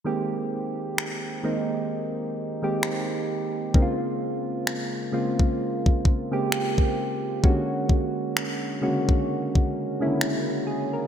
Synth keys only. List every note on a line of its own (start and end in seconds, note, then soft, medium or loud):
0.04 1.33 D#3 medium
0.04 1.33 G#3 medium
0.04 1.33 A#3 medium
0.04 1.34 C4 medium
0.04 1.34 G4 medium
1.43 2.51 D#3 medium
1.43 2.51 G#3 medium
1.43 2.51 A#3 medium
1.43 2.51 C4 medium
1.43 2.52 D#4 medium
2.62 3.65 D#3 medium
2.62 3.66 G#3 medium
2.62 3.66 A#3 medium
2.62 3.66 C4 medium
2.62 3.66 G4 medium
3.74 5.02 C#3 medium
3.74 5.02 G#3 medium
3.74 5.03 A#3 medium
3.74 5.03 C4 medium
3.74 3.83 D#4 medium
3.82 5.06 F4 medium
5.12 6.20 C#3 medium
5.12 6.20 G#3 medium
5.12 6.20 A#3 medium
5.12 6.20 C4 medium
5.12 6.21 F4 medium
6.31 7.35 C#3 medium
6.31 7.35 G#3 medium
6.31 7.35 A#3 medium
6.31 7.35 C4 medium
6.31 7.36 G4 medium
7.43 7.51 C#3 medium
7.43 8.72 G#3 medium
7.43 8.72 A#3 medium
7.43 8.72 C#4 medium
7.43 8.72 F#4 medium
7.49 8.75 D3 medium
8.81 8.89 C#3 medium
8.81 9.89 G#3 medium
8.81 9.89 A#3 medium
8.81 9.90 C#4 medium
8.81 9.90 F#4 medium
8.88 9.92 D3 medium
10.00 10.06 C#3 medium
10.00 11.04 G#3 medium
10.00 11.04 A#3 medium
10.00 11.04 C#4 medium
10.00 10.21 E4 medium
10.07 11.07 D3 medium
10.47 10.66 E4 medium
10.67 10.92 G#4 medium
10.93 11.07 A#4 medium